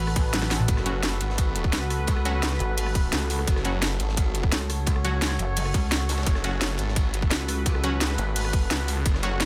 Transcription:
Already playing: wobble bass A1, ambient pad F#4 A4 B4
0.07 cross-stick
0.16 kick, closed hi-hat, ride
0.33 snare, closed hi-hat, high tom
0.42 cross-stick, snare
0.51 snare, open hi-hat, ride
0.60 cross-stick, mid tom
0.68 detuned saw bass F#1, ambient pad B4, kick, closed hi-hat, ride
0.77 cross-stick, snare
0.86 synth stab F#3 C#4 F#4, closed hi-hat, ride
1.03 snare, closed hi-hat, ride
1.21 detuned saw bass G#1, snare, closed hi-hat, ride
1.30 snare
1.38 kick, closed hi-hat, ride
1.55 closed hi-hat, ride
1.64 kick, ride
1.73 wobble bass C#2, snare, closed hi-hat, ride
1.82 cross-stick
1.90 cross-stick, open hi-hat, ride
2.07 kick, closed hi-hat, ride
2.17 cross-stick
2.25 synth stab F#3 C#4 F#4, closed hi-hat, ride
2.43 snare, closed hi-hat, ride
2.51 snare, ride
2.59 detuned saw bass G#1, closed hi-hat, ride
2.77 closed hi-hat, open hi-hat
2.86 cross-stick
2.95 kick, closed hi-hat, ride
3.12 detuned saw bass C#2, snare, closed hi-hat, ride
3.21 cross-stick, ride
3.30 open hi-hat, ride
3.39 cross-stick
3.47 detuned saw bass F#1, ambient pad C#5, kick, closed hi-hat, ride
3.56 cross-stick, snare
3.64 synth stab F#3 C#4 F#4, closed hi-hat, ride
3.82 snare, closed hi-hat, ride
4.00 detuned saw bass G#1, snare, closed hi-hat, ride
4.09 snare
4.17 kick, closed hi-hat, ride
4.35 closed hi-hat, ride
4.43 kick, ride
4.51 wobble bass C#2, snare, closed hi-hat, ride
4.61 cross-stick
4.70 cross-stick, open hi-hat, ride
4.86 kick, closed hi-hat, ride
4.96 cross-stick
5.04 synth stab F#3 C#4 F#4, closed hi-hat, ride
5.22 snare, closed hi-hat, ride
5.31 snare, ride
5.39 wobble bass F#1, closed hi-hat, ride
5.56 closed hi-hat, open hi-hat
5.66 cross-stick
5.74 wobble bass C#2, kick, closed hi-hat, ride
5.92 snare, closed hi-hat, ride
5.99 cross-stick, ride
6.09 snare, open hi-hat, ride
6.17 cross-stick, snare, ride
6.23 detuned saw bass F#1, ambient pad B4, kick, snare, closed hi-hat, ride
6.27 ride
6.35 cross-stick, snare
6.44 synth stab F#3 C#4 F#4, closed hi-hat, ride
6.61 snare, closed hi-hat, ride
6.78 detuned saw bass G#1, snare, closed hi-hat, ride
6.88 snare
6.96 kick, closed hi-hat, ride
7.14 closed hi-hat, ride
7.22 kick, ride
7.30 wobble bass C#2, snare, closed hi-hat, ride
7.40 cross-stick
7.48 cross-stick, open hi-hat, ride
7.66 kick, closed hi-hat, ride
7.75 cross-stick
7.84 synth stab F#3 C#4 F#4, closed hi-hat, ride
8.01 snare, closed hi-hat, ride
8.10 snare, ride
8.18 detuned saw bass G#1, closed hi-hat, ride
8.35 closed hi-hat, open hi-hat
8.45 cross-stick
8.53 kick, closed hi-hat, ride
8.70 detuned saw bass C#2, snare, closed hi-hat, ride
8.79 cross-stick, ride
8.88 open hi-hat, ride
8.97 cross-stick
9.05 detuned saw bass F#1, ambient pad C#5, kick, closed hi-hat, ride
9.14 cross-stick, snare
9.23 synth stab F#3 C#4 F#4, closed hi-hat, ride
9.40 snare, closed hi-hat, ride

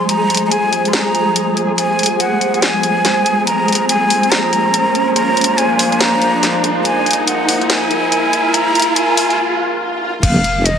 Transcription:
Already playing: ambient pad F3 C5 G#5, synth texture G#3 G#4, riser
0.09 ney A#5, closed hi-hat
0.30 closed hi-hat
0.35 closed hi-hat
0.37 closed hi-hat
0.46 ney A#5
0.51 ney G#5, closed hi-hat
0.73 closed hi-hat
0.85 ney C6, closed hi-hat
0.93 ney A#5, snare, closed hi-hat
1.15 closed hi-hat
1.36 closed hi-hat
1.57 closed hi-hat
1.77 ney G#5, closed hi-hat
1.99 closed hi-hat
2.03 closed hi-hat
2.06 closed hi-hat
2.19 ney F#5, closed hi-hat
2.41 closed hi-hat
2.54 closed hi-hat
2.62 ney G#5, snare, closed hi-hat
2.83 closed hi-hat
3.05 snare, closed hi-hat
3.26 closed hi-hat
3.46 ambient pad F3 A#3 C5, ney A#5, closed hi-hat
3.68 closed hi-hat
3.72 closed hi-hat
3.75 closed hi-hat
3.88 ney G#5, closed hi-hat
4.10 open hi-hat
4.23 closed hi-hat
4.31 ney A#5, snare, closed hi-hat
4.53 closed hi-hat
4.74 closed hi-hat
4.95 closed hi-hat
5.15 ney A#5, closed hi-hat
5.37 closed hi-hat
5.41 closed hi-hat
5.44 closed hi-hat
5.57 ney G#5, closed hi-hat
5.79 open hi-hat
5.92 closed hi-hat
6.00 ney A#5, snare, closed hi-hat
6.22 closed hi-hat
6.43 snare, closed hi-hat
6.64 closed hi-hat
6.84 ambient pad A#4, ney G#5, closed hi-hat
7.06 closed hi-hat
7.11 closed hi-hat
7.13 closed hi-hat
7.27 ney F#5, closed hi-hat
7.49 open hi-hat
7.61 closed hi-hat
7.69 ney G#5, snare, closed hi-hat
7.91 closed hi-hat
8.12 closed hi-hat
8.33 closed hi-hat
8.54 ney A#5, closed hi-hat
8.75 closed hi-hat
8.80 closed hi-hat
8.82 closed hi-hat
8.96 ney G#5, closed hi-hat
9.17 open hi-hat
9.30 closed hi-hat
9.38 swell
10.23 wobble bass F1, ney F5, kick, closed hi-hat, crash
10.36 muted conga, high conga
10.44 closed hi-hat
10.65 ney D#5, closed hi-hat

